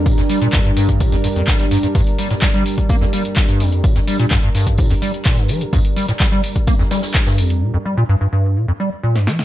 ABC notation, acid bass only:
X:1
M:4/4
L:1/16
Q:1/4=127
K:Gm
V:1 name="Acid bass" clef=bass
B,, F,, G, B,, G,, G,, G,,2 B,, F,, G,, F,, G, G, G,, G,, | G,, z G, A,, G, G, z2 B, F,, G, z2 G,, F,,2 | B,, F,, G, B,, G,, G,, G,,2 B,, F,, G, z B,, G,, F, B,, | G,, z G, A,, G, G, z2 B, F,, G, z2 G,, F,,2 |
B,, F,, G, B,, G,, G,, G,,2 B,, F,, G, z B,, G,, F, B,, |]